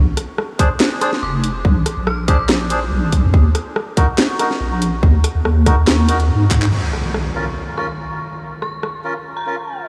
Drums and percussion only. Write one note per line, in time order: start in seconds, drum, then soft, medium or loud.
0.17 cross-stick medium
0.17 closed hi-hat medium
0.38 cross-stick medium
0.59 kick loud
0.59 closed hi-hat medium
0.80 snare loud
0.80 clap medium
1.01 cross-stick medium
1.01 closed hi-hat medium
1.13 snare soft
1.44 closed hi-hat medium
1.65 kick loud
1.86 cross-stick medium
1.86 closed hi-hat medium
2.07 cross-stick medium
2.28 kick loud
2.28 closed hi-hat medium
2.49 snare loud
2.49 clap medium
2.70 closed hi-hat medium
3.12 kick medium
3.12 closed hi-hat medium
3.34 kick loud
3.55 cross-stick medium
3.55 closed hi-hat medium
3.76 cross-stick medium
3.97 kick loud
3.97 closed hi-hat medium
4.18 snare loud
4.18 clap medium
4.39 cross-stick medium
4.39 closed hi-hat medium
4.51 snare soft
4.82 closed hi-hat medium
5.03 kick loud
5.24 cross-stick medium
5.24 closed hi-hat medium
5.45 cross-stick medium
5.66 kick loud
5.66 cross-stick medium
5.66 closed hi-hat medium
5.87 snare loud
5.87 clap medium
6.09 closed hi-hat medium
6.20 closed hi-hat soft
6.51 kick medium
6.51 clap medium
6.51 closed hi-hat medium
6.62 clap loud
6.93 cross-stick soft
7.14 cross-stick medium
7.78 cross-stick soft
8.62 cross-stick soft
8.83 cross-stick medium